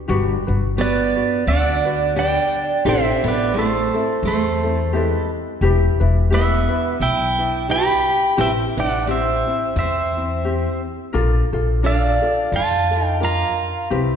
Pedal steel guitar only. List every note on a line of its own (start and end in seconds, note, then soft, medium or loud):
0.81 1.45 B4 medium
0.81 1.49 D5 medium
1.48 2.14 D5 medium
1.48 2.19 F#5 medium
2.19 2.83 D5 medium
2.19 2.89 G5 loud
2.89 3.24 C5 medium
2.89 3.27 E5 loud
3.28 3.55 B4 medium
3.28 3.57 D5 medium
3.58 4.22 A4 medium
3.58 4.26 C5 medium
4.27 5.30 A4 medium
4.27 4.95 C5 medium
4.95 5.30 B4 medium
6.34 6.98 B4 medium
6.34 7.01 E5 medium
7.02 7.66 E5 medium
7.02 7.71 G5 medium
7.71 8.36 G5 medium
7.71 8.41 B5 medium
8.41 8.51 E5 medium
8.41 8.51 G5 loud
8.80 9.06 D5 medium
8.80 9.09 F#5 medium
9.11 9.74 C5 medium
9.11 9.78 E5 medium
9.79 10.82 C5 medium
9.79 10.82 E5 medium
11.86 12.50 D5 medium
11.86 12.55 F5 medium
12.56 13.19 F5 medium
12.56 13.08 A5 medium
13.08 13.25 G5 medium
13.24 13.88 F5 medium
13.24 13.88 A#5 loud